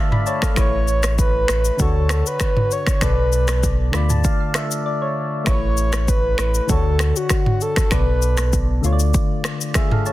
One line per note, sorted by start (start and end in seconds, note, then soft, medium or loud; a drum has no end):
0.00 0.53 D3 medium
0.00 0.53 A3 medium
0.00 0.54 F4 medium
0.00 0.12 D5 medium
0.00 0.24 E5 medium
0.00 0.42 F5 medium
0.00 0.26 A5 medium
0.12 0.25 D5 medium
0.12 0.26 B5 medium
0.12 mid tom loud
0.26 0.42 C#5 medium
0.26 0.55 D5 medium
0.26 0.42 A5 medium
0.26 shaker soft
0.42 0.72 A4 medium
0.42 0.71 F5 medium
0.42 finger snap medium
0.42 kick loud
0.42 cross-stick medium
0.42 shaker medium
0.54 1.45 A1 loud
0.54 1.76 A3 medium
0.54 1.76 E4 medium
0.54 1.77 B4 medium
0.54 1.15 C#5 loud
0.54 finger snap medium
0.54 kick loud
0.54 cross-stick medium
0.54 shaker medium
0.59 1.78 C#5 medium
0.88 shaker medium
1.03 finger snap medium
1.03 cross-stick loud
1.03 shaker medium
1.19 1.82 B4 loud
1.19 kick medium
1.19 shaker medium
1.48 1.70 A1 medium
1.48 finger snap medium
1.48 cross-stick medium
1.48 shaker medium
1.65 shaker medium
1.77 2.23 D2 loud
1.77 2.98 D3 medium
1.77 2.99 D4 medium
1.77 3.00 F#4 medium
1.77 2.28 A4 loud
1.77 kick loud
1.77 shaker medium
1.82 3.01 C#5 medium
2.09 finger snap medium
2.09 cross-stick loud
2.09 shaker medium
2.27 2.74 B4 loud
2.27 shaker medium
2.40 finger snap medium
2.40 kick medium
2.40 cross-stick medium
2.40 shaker medium
2.57 mid tom loud
2.71 3.04 C#5 loud
2.71 shaker soft
2.87 finger snap medium
2.87 kick loud
2.87 cross-stick medium
2.87 shaker medium
3.01 3.90 B1 loud
3.01 3.93 B2 medium
3.01 3.94 B3 medium
3.01 3.94 A4 medium
3.01 3.64 B4 medium
3.01 3.94 D5 medium
3.01 finger snap medium
3.01 kick loud
3.01 cross-stick medium
3.01 shaker medium
3.33 shaker medium
3.48 finger snap medium
3.48 cross-stick loud
3.48 shaker medium
3.63 kick medium
3.63 shaker medium
3.91 4.27 D2 loud
3.91 5.43 D3 medium
3.91 5.43 A3 medium
3.91 5.44 F4 medium
3.91 4.09 B5 medium
3.91 finger snap medium
3.91 cross-stick medium
3.91 shaker medium
3.96 4.85 D5 medium
4.10 4.23 A5 medium
4.10 mid tom medium
4.10 shaker medium
4.24 4.39 F5 medium
4.24 kick loud
4.24 shaker medium
4.40 4.54 F5 medium
4.54 4.83 E5 medium
4.54 finger snap medium
4.54 cross-stick medium
4.54 shaker medium
4.71 shaker medium
4.86 5.01 D5 medium
5.02 5.44 C#5 medium
5.44 6.35 A1 loud
5.44 6.66 A3 medium
5.44 6.66 E4 medium
5.44 6.67 B4 medium
5.44 6.10 C#5 loud
5.44 finger snap medium
5.44 kick loud
5.44 cross-stick medium
5.44 shaker medium
5.49 6.68 C#5 medium
5.77 shaker medium
5.93 finger snap medium
5.93 cross-stick medium
5.93 shaker medium
6.08 6.69 B4 loud
6.08 kick medium
6.08 shaker medium
6.38 6.60 A1 medium
6.38 finger snap medium
6.38 cross-stick medium
6.38 shaker medium
6.55 shaker medium
6.67 7.13 D2 loud
6.67 7.88 D3 medium
6.67 7.89 D4 medium
6.67 7.90 F#4 medium
6.67 7.18 A4 loud
6.67 kick loud
6.67 shaker medium
6.72 7.91 C#5 medium
6.99 finger snap medium
6.99 cross-stick medium
6.99 shaker medium
7.16 7.63 F#4 medium
7.16 shaker medium
7.29 finger snap medium
7.29 kick medium
7.29 cross-stick medium
7.29 shaker medium
7.46 mid tom loud
7.61 7.94 A4 loud
7.61 shaker soft
7.76 finger snap medium
7.76 kick loud
7.76 cross-stick medium
7.76 shaker medium
7.91 8.80 B1 loud
7.91 8.83 B2 medium
7.91 8.83 B3 medium
7.91 8.84 A4 medium
7.91 8.53 B4 medium
7.91 8.84 D5 medium
7.91 finger snap medium
7.91 kick loud
7.91 cross-stick medium
7.91 shaker medium
8.22 shaker medium
8.37 finger snap medium
8.37 cross-stick loud
8.37 shaker medium
8.53 kick medium
8.53 shaker medium
8.81 9.16 D2 medium
8.81 10.12 D3 medium
8.81 10.12 A3 medium
8.81 10.12 F4 medium
8.81 shaker medium
8.86 8.92 C#5 medium
8.93 9.78 D5 medium
9.00 shaker medium
9.14 kick loud
9.14 shaker medium
9.44 finger snap medium
9.44 cross-stick medium
9.44 shaker medium
9.61 shaker medium
9.74 9.91 G#4 medium
9.74 9.91 E5 medium
9.74 finger snap medium
9.74 kick medium
9.74 cross-stick medium
9.74 shaker medium
9.91 10.06 A4 medium
9.91 10.05 F5 medium
9.91 mid tom loud
10.06 10.12 C#5 medium
10.06 10.12 A5 medium
10.06 shaker soft